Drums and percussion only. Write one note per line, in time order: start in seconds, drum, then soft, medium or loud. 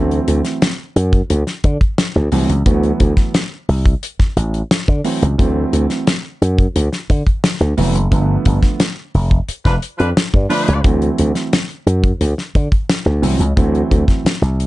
0.11 closed hi-hat soft
0.28 closed hi-hat medium
0.45 snare soft
0.45 closed hi-hat medium
0.62 snare loud
0.62 closed hi-hat medium
0.96 closed hi-hat medium
1.13 kick medium
1.13 closed hi-hat soft
1.30 closed hi-hat medium
1.47 snare soft
1.47 closed hi-hat soft
1.64 kick medium
1.64 closed hi-hat medium
1.81 kick medium
1.81 closed hi-hat soft
1.98 snare loud
1.98 closed hi-hat medium
2.32 open hi-hat medium
2.50 closed hi-hat medium
2.66 kick loud
2.66 closed hi-hat medium
2.83 closed hi-hat soft
3.00 kick medium
3.00 closed hi-hat medium
3.17 kick medium
3.17 snare soft
3.17 closed hi-hat medium
3.34 snare loud
3.34 closed hi-hat medium
3.69 open hi-hat soft
3.86 kick medium
3.86 closed hi-hat medium
4.03 closed hi-hat medium
4.19 kick medium
4.19 snare soft
4.37 closed hi-hat medium
4.54 closed hi-hat soft
4.71 snare loud
4.71 closed hi-hat loud
4.88 kick medium
4.88 closed hi-hat soft
5.04 open hi-hat medium
5.23 closed hi-hat medium
5.39 kick loud
5.39 closed hi-hat medium
5.73 closed hi-hat medium
5.90 snare soft
5.90 closed hi-hat medium
6.07 snare loud
6.07 closed hi-hat loud
6.42 closed hi-hat medium
6.58 kick medium
6.58 closed hi-hat soft
6.76 closed hi-hat medium
6.93 snare soft
6.93 closed hi-hat soft
7.10 kick medium
7.10 closed hi-hat medium
7.27 kick medium
7.27 closed hi-hat soft
7.44 snare loud
7.44 closed hi-hat loud
7.61 closed hi-hat soft
7.78 open hi-hat medium
7.95 closed hi-hat medium
8.12 kick loud
8.12 closed hi-hat medium
8.45 kick medium
8.45 closed hi-hat medium
8.63 kick medium
8.63 snare soft
8.63 closed hi-hat medium
8.80 snare loud
8.80 closed hi-hat medium
9.14 open hi-hat soft
9.31 kick medium
9.31 closed hi-hat soft
9.48 closed hi-hat medium
9.65 kick medium
9.65 snare soft
9.65 closed hi-hat soft
9.82 closed hi-hat medium
10.00 closed hi-hat soft
10.17 snare loud
10.17 closed hi-hat medium
10.34 kick medium
10.50 open hi-hat medium
10.68 closed hi-hat medium
10.84 kick loud
10.84 closed hi-hat medium
11.02 closed hi-hat soft
11.18 closed hi-hat medium
11.35 snare soft
11.35 closed hi-hat soft
11.53 snare loud
11.53 closed hi-hat medium
11.70 closed hi-hat soft
11.87 closed hi-hat medium
12.04 kick medium
12.04 closed hi-hat soft
12.21 closed hi-hat medium
12.38 snare soft
12.55 kick loud
12.55 closed hi-hat medium
12.72 kick medium
12.72 closed hi-hat soft
12.90 snare loud
12.90 closed hi-hat loud
13.23 open hi-hat medium
13.41 closed hi-hat medium
13.57 kick loud
13.57 closed hi-hat medium
13.75 closed hi-hat soft
13.91 kick medium
13.91 closed hi-hat medium
14.08 kick medium
14.08 snare soft
14.08 closed hi-hat soft
14.26 snare loud
14.26 closed hi-hat medium
14.43 closed hi-hat soft
14.60 closed hi-hat medium